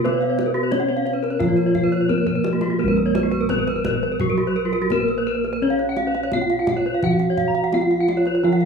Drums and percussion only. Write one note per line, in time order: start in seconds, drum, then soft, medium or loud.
0.05 kendang high soft
0.22 kendang slap soft
0.39 kendang slap soft
0.39 kendang high soft
0.55 kendang slap soft
0.72 kendang slap soft
0.72 kendang high soft
1.07 kendang slap soft
1.24 kendang slap soft
1.40 kendang low soft
1.57 kendang slap soft
1.75 kendang slap soft
1.75 kendang low soft
2.10 kendang low soft
2.26 kendang low soft
2.44 kendang high soft
2.61 kendang high soft
2.97 kendang slap soft
3.15 kendang high soft
3.32 kendang slap soft
3.49 kendang high soft
3.49 kendang low soft
3.67 kendang slap soft
3.85 kendang high soft
3.85 kendang low soft
4.20 kendang low soft
4.38 kendang slap soft
4.73 kendang slap soft
4.90 kendang high soft
4.90 kendang low soft
5.08 kendang slap soft
5.44 kendang slap soft
5.79 kendang slap soft
5.96 kendang high soft
6.14 kendang slap soft
6.32 kendang high soft
6.32 kendang low soft
6.50 kendang slap soft
6.67 kendang high soft
6.67 kendang low soft
7.03 kendang low soft
7.19 kendang slap soft
7.37 kendang low soft
7.55 kendang slap soft
7.72 kendang high soft
7.91 kendang slap soft
8.08 kendang high soft
8.26 kendang slap soft
8.61 kendang slap soft